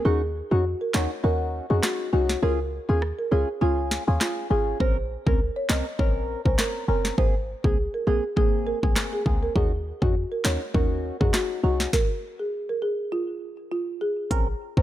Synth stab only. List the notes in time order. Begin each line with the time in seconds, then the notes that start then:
0.05 C#4 D#4 F#4
0.51 C#4 D#4 F#4
0.94 C#4 D#4 F#4
1.24 C#4 D#4 F#4
1.70 C#4 D#4 F#4
2.13 C#4 D#4 F#4
2.42 C#4 F4 G#4
2.89 C#4 F4 G#4
3.31 C#4 F4 G#4
3.61 C#4 F4 G#4
4.08 C#4 F4 G#4
4.50 C#4 F4 G#4
4.80 C4 C#4 A#4
5.26 C4 C#4 A#4
5.69 C4 C#4 A#4
5.99 C4 C#4 A#4
6.45 C4 C#4 A#4
6.88 C4 C#4 A#4
7.18 A#3 C4 G#4
7.64 A#3 C4 G#4
8.07 A#3 C4 G#4
8.36 A#3 C4 G#4
8.83 A#3 C4 G#4
9.26 A#3 C4 G#4
9.55 C#4 D#4 F#4
10.02 C#4 D#4 F#4
10.45 C#4 D#4 F#4
10.74 C#4 D#4 F#4
11.21 C#4 D#4 F#4
11.63 C#4 D#4 F#4
14.31 C4 C#4 A#4
14.77 C4 C#4 A#4